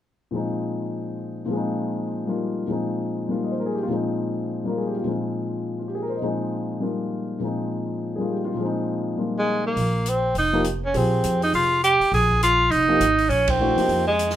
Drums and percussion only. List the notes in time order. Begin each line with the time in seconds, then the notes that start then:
9.77 open hi-hat
10.06 closed hi-hat
10.35 open hi-hat
10.64 closed hi-hat
10.94 open hi-hat
11.24 closed hi-hat
11.42 open hi-hat
11.54 open hi-hat
11.84 closed hi-hat
12.01 open hi-hat
12.14 open hi-hat
12.31 kick
12.43 closed hi-hat
12.71 open hi-hat
13.01 closed hi-hat
13.18 open hi-hat
13.30 open hi-hat
13.48 kick, ride
13.78 open hi-hat
13.89 open hi-hat
14.19 closed hi-hat
14.30 snare